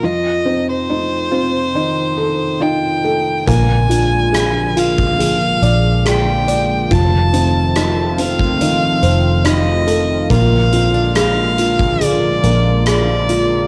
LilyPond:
<<
  \new Staff \with { instrumentName = "Violin" } { \time 4/4 \key f \minor \tempo 4 = 70 ees''8. c''2~ c''16 g''4 | aes''4. f''4. g''4 | a''4. f''4. ees''4 | f''4 f''4 d''4 d''4 | }
  \new Staff \with { instrumentName = "Felt piano" } { \time 4/4 \key f \minor f8 c'8 ees'8 c'8 ees'8 a'8 ees'8 a'8 | bes8 f'8 aes'8 f'8 aes'8 d''8 aes'8 d''8 | f8 c'8 ees'8 c'8 ees'8 c''8 ees'8 a'8 | bes8 f'8 aes'8 f'8 aes'8 bes8 aes'8 f'8 | }
  \new Staff \with { instrumentName = "Nylon-string guitar" } { \time 4/4 \key f \minor <f, f'>8 ees'8 a8 f'8 ees8 ees'8 f'8 a8 | <bes, f'>8 d'8 aes8 f'8 f8 d'8 f'8 aes8 | <f, f'>8 ees'8 a8 f'8 ees8 ees'8 f'8 a8 | <bes, f'>8 c'16 d'16 aes8 f'8 f8 d'8 f'8 aes8 | }
  \new Staff \with { instrumentName = "Analog synth pad" } { \clef bass \time 4/4 \key f \minor << { r1 | f'1~ | f'1~ | f'1 | } \\ { r1 | <d f aes bes>1 | <ees f a c'>1 | <d f aes bes>1 | } >> }
  \new Staff \with { instrumentName = "Fingered electric bass" } { \clef bass \time 4/4 \key f \minor r1 | bes,,2~ bes,,8 bes,,4. | f,,2~ f,,8 f,,4. | bes,,2~ bes,,8 bes,,4. | }
  \new DrumStaff \with { instrumentName = "Drums" } \drummode { \time 4/4 r4 r4 r4 r4 | <hh bd>8 hh8 <hh ss>8 hh16 bd16 hh8 hh8 <hh ss>8 hh8 | <hh bd>8 hh8 <hh ss>8 hh16 bd16 hh8 hh8 <hh ss>8 hh8 | <hh bd>8 hh8 <hh ss>8 hh16 bd16 hh8 hh8 <hh ss>8 hh8 | }
>>